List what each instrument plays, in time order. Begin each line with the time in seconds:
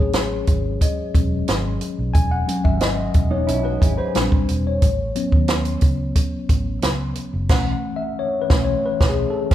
Already playing: fingered electric bass A1, tine electric piano F#3 G#3 C#4 G#4 B4 C#5
0.13 snare, closed hi-hat
0.47 fingered electric bass G#1, kick, closed hi-hat
0.81 celesta D#5, kick, closed hi-hat
1.14 fingered electric bass E1, tine electric piano F#3 G#3 C#4, kick, closed hi-hat
1.48 fingered electric bass G#1, snare, closed hi-hat
1.81 closed hi-hat
1.99 fingered electric bass B1
2.14 fingered electric bass E1, tine electric piano G#5, kick, closed hi-hat
2.31 tine electric piano F#5
2.47 tine electric piano F#3 G#3 C#4, closed hi-hat
2.64 fingered electric bass G#1, tine electric piano E5, kick
2.81 tine electric piano D#5, snare, closed hi-hat
3.14 fingered electric bass E1, kick, closed hi-hat
3.31 clean electric guitar B3 D#4, tine electric piano C#5
3.47 fingered electric bass B1, clean electric guitar C#4 E4, celesta D#4, closed hi-hat
3.63 clean electric guitar D#4 F#4, tine electric piano B4
3.81 fingered electric bass G#1, clean electric guitar E4 G#4, kick, closed hi-hat
3.97 clean electric guitar G#4 B4, tine electric piano C5
4.14 fingered electric bass A#1, tine electric piano G3 C4 D4, snare, closed hi-hat
4.32 kick
4.49 fingered electric bass E1, closed hi-hat
4.67 tine electric piano C#5
4.82 fingered electric bass A1, kick, closed hi-hat
5.15 tine electric piano F#3 B3 C#4, closed hi-hat
5.32 fingered electric bass D#2, kick
5.48 snare, closed hi-hat
5.65 closed hi-hat
5.81 fingered electric bass C#2, kick, closed hi-hat
6.15 kick, closed hi-hat
6.49 fingered electric bass A1, kick, closed hi-hat
6.82 fingered electric bass C#2, snare, closed hi-hat
7.15 closed hi-hat
7.33 fingered electric bass F#1
7.49 fingered electric bass B1, tine electric piano E3 A3 C#4 F#5, kick, snare, crash
7.96 tine electric piano E5
8.19 tine electric piano C#5
8.42 tine electric piano B4
8.50 fingered electric bass B1, tine electric piano E3 A3 C#4, kick, snare
8.64 tine electric piano C#5
8.86 tine electric piano B4
9.01 fingered electric bass B1, kick, snare
9.09 tine electric piano G#4
9.30 tine electric piano A4
9.51 fingered electric bass B1, kick, snare, crash